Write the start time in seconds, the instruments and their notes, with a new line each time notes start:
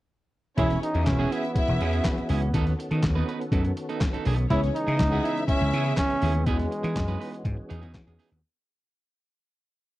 0.57 slap bass E1, tonewheel organ E3 B3 C#4 F#4 G#4, clean electric guitar C#4 E4 G#4, string section C#4 C#5, trombone E4, kick, closed hi-hat
0.70 muted clean electric guitar stroke, snare, closed hi-hat
0.82 trombone D#4, muted clean electric guitar stroke, closed hi-hat
0.94 slap bass E2, clean electric guitar C#4 E4 G#4, string section D#4 D#5, closed hi-hat
1.06 slap bass E1, trombone C#4, string section E4 E5, muted clean electric guitar stroke, kick, snare, clap, closed hi-hat
1.19 clean electric guitar C#4 E4 G#4, string section F#4 F#5
1.31 trombone B3, clean electric guitar C#4 E4 G#4, string section E4 E5, closed hi-hat
1.44 muted clean electric guitar stroke, closed hi-hat
1.55 string section E4 E5, muted clean electric guitar stroke, kick, closed hi-hat
1.68 slap bass E1, muted clean electric guitar stroke, closed hi-hat
1.80 slap bass E2, clean electric guitar C#4 E4 G#4, closed hi-hat
1.93 clean electric guitar C#4 E4 G#4, closed hi-hat
2.05 muted clean electric guitar stroke, kick, snare, clap, closed hi-hat
2.17 muted clean electric guitar stroke, closed hi-hat
2.29 slap bass C#2, trombone B3, clean electric guitar C#4 E4 G#4, open hi-hat
2.42 muted clean electric guitar stroke, closed hi-hat
2.54 slap bass D#2, tonewheel organ D#3 A4, clean electric guitar B3 D#4 A4, kick, closed hi-hat
2.66 muted clean electric guitar stroke, snare, closed hi-hat
2.79 muted clean electric guitar stroke, closed hi-hat
2.91 slap bass D#3, clean electric guitar B3 D#4 A4, closed hi-hat
3.03 slap bass D#2, kick, snare, clap, closed hi-hat
3.15 clean electric guitar B3 D#4 B4
3.27 clean electric guitar B3 D#4 B4, closed hi-hat
3.40 muted clean electric guitar stroke, closed hi-hat
3.52 slap bass F#2, clean electric guitar B3 D#4 A4, kick, closed hi-hat
3.65 muted clean electric guitar stroke, closed hi-hat
3.77 muted clean electric guitar stroke, closed hi-hat
3.89 clean electric guitar B3 D#4 A4, closed hi-hat
4.01 kick, snare, clap, closed hi-hat
4.13 clean electric guitar B3 D#4 A4, closed hi-hat
4.25 slap bass B1, clean electric guitar B3 D#4 A4, open hi-hat
4.38 muted clean electric guitar stroke, closed hi-hat
4.50 slap bass C#2, tonewheel organ C#3 E3 G#3 C#4, clean electric guitar B3 E4 G#4, string section C#4 C#5, trombone E4, kick, closed hi-hat
4.62 muted clean electric guitar stroke, snare, closed hi-hat
4.75 trombone D#4, muted clean electric guitar stroke, closed hi-hat
4.87 slap bass C#3, clean electric guitar B3 E4 G#4, string section D#4 D#5, closed hi-hat
4.99 slap bass C#2, string section E4 E5, muted clean electric guitar stroke, kick, snare, clap, closed hi-hat
5.11 clean electric guitar B3 E4 G#4, string section F#4 F#5
5.23 clean electric guitar B3 E4 G#4, string section E4 E5, closed hi-hat
5.36 muted clean electric guitar stroke, closed hi-hat
5.47 trombone C#4, string section E4 E5, muted clean electric guitar stroke, kick, closed hi-hat
5.61 slap bass C#2, muted clean electric guitar stroke, closed hi-hat
5.73 slap bass C#3, clean electric guitar B3 E4 G#4, closed hi-hat
5.85 clean electric guitar B3 G#4, closed hi-hat
5.97 trombone C#4, muted clean electric guitar stroke, kick, snare, clap, closed hi-hat
6.10 muted clean electric guitar stroke, closed hi-hat
6.22 slap bass D#2, clean electric guitar B3 E4 G#4, open hi-hat
6.35 muted clean electric guitar stroke, closed hi-hat
6.46 slap bass E2, tonewheel organ E3 F#4 G#4, trombone G#3, clean electric guitar B3 D#4 G#4, kick, closed hi-hat
6.59 muted clean electric guitar stroke, snare, closed hi-hat
6.71 muted clean electric guitar stroke, closed hi-hat
6.83 slap bass E3, clean electric guitar B3 D#4 G#4, closed hi-hat
6.96 slap bass F#2, kick, snare, clap, closed hi-hat
7.08 clean electric guitar B3 D#4 B4, closed hi-hat
7.20 clean electric guitar B3 D#4 B4, open hi-hat
7.32 muted clean electric guitar stroke, closed hi-hat
7.45 slap bass G#2, muted clean electric guitar stroke, kick, closed hi-hat
7.57 muted clean electric guitar stroke
7.69 slap bass E2, clean electric guitar B3 D#4 G#4, closed hi-hat
7.81 slap bass E2, clean electric guitar B3 D#4 G#4, closed hi-hat
7.94 slap bass E3, muted clean electric guitar stroke, kick, snare, clap, closed hi-hat
8.07 slap bass E2, clean electric guitar B3 D#4 G#4, closed hi-hat
8.19 clean electric guitar B3 D#4 G#4, open hi-hat
8.31 slap bass D#2, muted clean electric guitar stroke